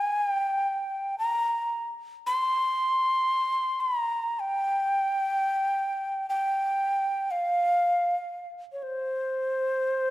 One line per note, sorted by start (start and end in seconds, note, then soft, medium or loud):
0.00 0.03 G5 medium
0.00 0.27 G#5 medium
0.27 1.16 G5 medium
1.19 1.87 A#5 medium
2.26 3.82 C6 medium
3.80 3.98 B5 medium
3.98 4.41 A#5 medium
4.40 6.28 G5 loud
6.29 7.32 G5 medium
7.31 8.49 F5 medium
8.72 8.84 C#5 medium
8.83 10.10 C5 medium